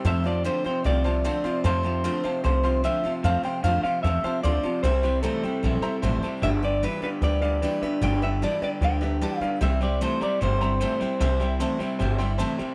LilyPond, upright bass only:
\new Staff \with { instrumentName = "Upright bass" } { \clef bass \time 4/4 \key c \major \tempo 4 = 151 f,4. r8 c,4. r8 | f,4. r8 c,4. r8 | f,8 r8 f,8 r8 e,8 r8 d,8 r8 | c,4. r8 bes,,8 r8 a,,8 r8 |
g,,4. r8 d,4. r8 | g,,4. r8 d,4. r8 | c,4. r8 g,,4. r8 | c,4. r8 g,,4. r8 | }